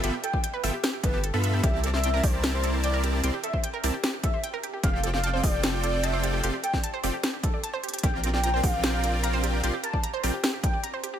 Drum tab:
HH |x---x---x---o---x---x---x---x---|x---x---x---o---x---x---x---x---|x---x---x---o---x---x---x---x---|x---x---x---o---x---x---x---x---|
SD |----------------o---------------|------o---------o---------------|----------------o---------------|------o---------o---------------|
BD |------o-------------o-----------|o-----------o-------------------|------o-------------o-----------|o-----------o-------------------|

HH |x---x---x---o---x---x---x---xxxx|x---x---x---o---x---x---x---x---|x---x---x---o---x---x---x---x---|
SD |------o---------o---------------|------o---------o---------------|----------------o---------------|
BD |------o-------------o-----------|o-----------o-------------------|------o-------------o-----------|